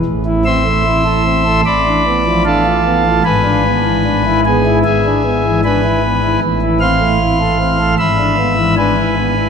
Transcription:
<<
  \new Staff \with { instrumentName = "Pipe organ" } { \time 4/4 \key e \phrygian \tempo 4 = 76 << { r8 <e'' c''' e'''>4. <d'' b'' d'''>4 <a' f'' a''>4 | <b' gis'' b''>4. <gis' gis''>8 <gis' e'' gis''>4 <b' gis'' b''>4 | r8 <f'' c''' f'''>4. <e'' b'' e'''>4 <b' gis'' b''>4 | } \\ { a,16 e'16 c'16 a16 e'16 a'16 c'16 a'16 a,16 d'16 b16 f16 d'16 f'16 b16 f'16 | gis,16 d'16 b16 e16 d'16 e'16 b16 e'16 gis,16 d'16 b16 e16 d'16 e'16 b16 e'16 | a,16 e'16 c'16 a16 e'16 a'16 c'16 a'16 gis,16 d'16 b16 e16 d'16 e'16 b16 e'16 | } >> }
  \new Staff \with { instrumentName = "Pipe organ" } { \clef bass \time 4/4 \key e \phrygian a,,2 a,,2 | gis,,2 gis,,2 | a,,2 gis,,2 | }
>>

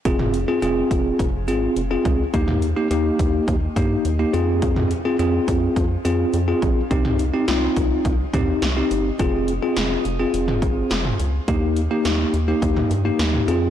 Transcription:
<<
  \new Staff \with { instrumentName = "Tine electric piano" } { \time 4/4 \key f \minor \tempo 4 = 105 <c' f' aes'>8 r16 <c' f' aes'>16 <c' f' aes'>4 r8 <c' f' aes'>8 r16 <c' f' aes'>8 r16 | <bes ees' g'>8 r16 <bes ees' g'>16 <bes ees' g'>4 r8 <bes ees' g'>8 r16 <bes ees' g'>16 <c' f' aes'>8~ | <c' f' aes'>8 r16 <c' f' aes'>16 <c' f' aes'>4 r8 <c' f' aes'>8 r16 <c' f' aes'>8 r16 | <c' ees' g'>8 r16 <c' ees' g'>16 <c' ees' f'>4 r8 <c' ees' g'>8 r16 <c' ees' g'>8 r16 |
<c' f' aes'>8 r16 <c' f' aes'>8. r16 <c' f' aes'>4. r8. | <bes ees' g'>8 r16 <bes ees' g'>8. r16 <bes ees' g'>8. r16 <bes ees' g'>8. <c' f' aes'>8 | }
  \new Staff \with { instrumentName = "Analog synth bass" } { \clef bass \time 4/4 \key f \minor f,,4 f,,8 f,,8 f,,8 aes,,8 f,,8 des,8 | ees,4 ees,8 ees,8 ees,8 g,8 ees,8 f,8~ | f,4 f,8 f,8 f,8 f,8 f,8 bes,,8 | c,4 c,8 c,8 c,8 ees,8 c,8 g,,8 |
f,,4 f,,8 f,,8 f,,8 aes,,8 f,,8 des,8 | ees,4 ees,8 ees,8 ees,8 g,8 ees,8 f,8 | }
  \new DrumStaff \with { instrumentName = "Drums" } \drummode { \time 4/4 <hh bd>16 toml16 hh8 hh8 <hh bd>8 <hh bd>8 hh8 hh8 <hh bd>8 | <hh bd>16 toml16 hh8 hh8 <hh bd>8 <hh bd>8 <hh bd>8 hh8 hh8 | <hh bd>16 toml16 hh8 hh8 <hh bd>8 <hh bd>8 hh8 hh8 <hh bd>8 | <hh bd>16 toml16 hh8 <hh sn>8 <hh bd>8 <hh bd>8 <hh bd toml>8 <hh sn>8 hh8 |
<hh bd>8 hh8 <hh sn>8 hh8 hh16 toml16 <hh bd>8 <hh sn>16 toml16 hh8 | <hh bd>8 hh8 <hh sn>8 hh8 <hh bd>16 toml16 hh8 <hh sn>16 toml16 hh8 | }
>>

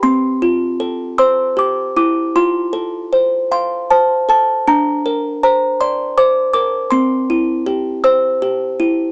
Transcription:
\new Staff \with { instrumentName = "Music box" } { \time 6/8 \key f \major \tempo 4. = 52 << { c'''4. <c''' e'''>8 d'''8 d'''8 | c'''4. c'''8 a''8 a''8 | bes''4 bes''8 c'''8 d'''8 d'''8 | c'''4. e'''4. | } \\ { c'8 f'8 a'8 c''8 g'8 e'8 | f'8 a'8 c''8 f''8 c''8 a'8 | d'8 bes'8 c''8 d''8 c''8 bes'8 | c'8 e'8 g'8 c''8 g'8 e'8 | } >> }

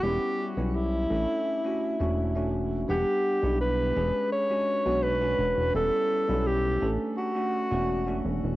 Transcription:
<<
  \new Staff \with { instrumentName = "Alto saxophone" } { \time 4/4 \key e \dorian \tempo 4 = 84 g'8 r8 e'2~ e'8 r8 | g'4 b'4 cis''4 b'4 | a'4 g'8 r8 fis'4. r8 | }
  \new Staff \with { instrumentName = "Tine electric piano" } { \time 4/4 \key e \dorian <g b cis' e'>8. <g b cis' e'>8. <a cis' d' a'>8. <a cis' d' fis'>8 <a cis' d' fis'>8 <a cis' d' fis'>8. | <g b d' fis''>8. <g b d' e'>8. <gis cis' d' gis'>8. <gis cis' d' fis'>8 <gis cis' d' fis'>8 <gis cis' d' fis'>8. | <g b cis' e'>8. <g b cis' e'>8. <a cis' d' a'>8. <a cis' d' fis'>8 <a cis' d' fis'>8 <a cis' d' fis'>8. | }
  \new Staff \with { instrumentName = "Analog synth bass" } { \clef bass \time 4/4 \key e \dorian e,,16 r8 b,,8. a,,16 r4 e,,4~ e,,16 | e,,16 r8 b,,8. e,,16 r4 b,,8. e,,16 e,,16 | e,,16 r8 b,,8. a,,16 r4 e,,8. e,,16 e,,16 | }
>>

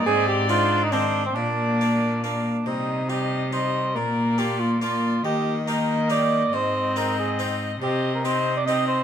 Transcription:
<<
  \new Staff \with { instrumentName = "Violin" } { \time 3/4 \key c \minor \tempo 4 = 140 d''2 c''4 | d''2~ d''8 r8 | ees''4 ees''4 ees''4 | d''2 d''4 |
ees''4 ees''2 | ees''2. | ees''4 ees''4 ees''4 | }
  \new Staff \with { instrumentName = "Cor anglais" } { \time 3/4 \key c \minor aes'8 g'8 f'8. ees'16 d'8. c'16 | d'2 d'4 | ees'4 g'4 c''4 | bes'4 g'8 f'8 f'4 |
g'4 bes'4 d''4 | c''4 bes'8 aes'8 r4 | g'8. bes'16 c''8. d''16 ees''8 c''8 | }
  \new Staff \with { instrumentName = "Harpsichord" } { \time 3/4 \key c \minor r4 <aes c' ees'>4 <ees aes c'>4 | r4 <bes d'>4 <bes d'>4 | r4 ees'4 ees'4 | r4 <bes d' f'>4 <bes d' f'>4 |
r4 <bes ees' g'>4 <bes ees' g'>4 | r4 <c' ees' aes'>4 <c' ees' aes'>4 | r4 <c' ees' g'>4 <c' ees' g'>4 | }
  \new Staff \with { instrumentName = "Harpsichord" } { \clef bass \time 3/4 \key c \minor aes,2. | bes,2~ bes,8 r8 | c2. | bes,2. |
ees2. | aes,2. | c2. | }
  \new Staff \with { instrumentName = "Viola" } { \time 3/4 \key c \minor c'4 d'4 c'4 | bes2~ bes8 r8 | g4 g4 g4 | bes2 bes4 |
bes4 bes2 | c'2. | c'4 c'4 c'4 | }
  \new Staff \with { instrumentName = "Cello" } { \clef bass \time 3/4 \key c \minor aes,2. | bes,2~ bes,8 r8 | c2. | bes,2. |
ees2. | aes,2. | c2. | }
>>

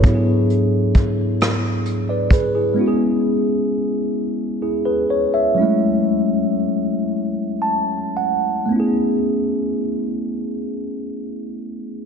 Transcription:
<<
  \new Staff \with { instrumentName = "Tine electric piano" } { \time 6/8 \key a \major \tempo 4. = 41 << { <a' cis''>16 r2 <b' d''>16 <gis' b'>16 <e' gis'>16~ | <e' gis'>16 r4. r16 <e' gis'>16 <gis' b'>16 cis''16 <cis'' e''>16~ | <cis'' e''>16 r4. r16 a''8 fis''8 | r2. | } \\ { <gis, fis b d' e' g' gis'>2. | <gis b cis' e' fis' gis'>2. | <fis gis a cis' e'>2. | <a b cis' e' gis'>2. | } >> }
  \new DrumStaff \with { instrumentName = "Drums" } \drummode { \time 6/8 <hh bd>8 hh8 <hh bd>8 <hh ss>8 hh8 <hh bd>8 | r4. r4. | r4. r4. | r4. r4. | }
>>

